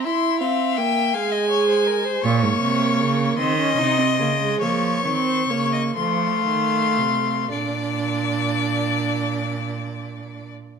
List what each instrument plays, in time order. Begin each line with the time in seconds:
0.03 viola E4, violin E5 C6
0.40 viola C4, violin F5
0.76 viola A#3, violin G5
1.14 viola G#3, violin F5 G#5
1.32 violin D#5
1.50 violin C#5
1.68 violin C5
1.87 violin A#4
2.05 violin C5
2.23 cello A#2, viola A#3, violin C#5 C#6
2.43 cello G#2
2.61 cello C3
3.00 cello C#3
3.37 cello D#3, viola C4, violin D#5 C6
3.58 viola C#4
3.78 cello C3, viola D#4
3.99 viola C4
4.18 cello C#3, viola A#3
4.41 viola G#3
4.60 cello F3, viola A#3, violin C#5 C#6
5.05 cello D#3, viola C4
5.27 violin C5
5.50 cello C#3, viola A#3, violin C#5
5.73 violin D#5
5.96 cello F3, viola A3, violin F5 C6
6.47 cello D#3
6.98 cello C3
7.51 cello A#2, viola D4, violin D5 D6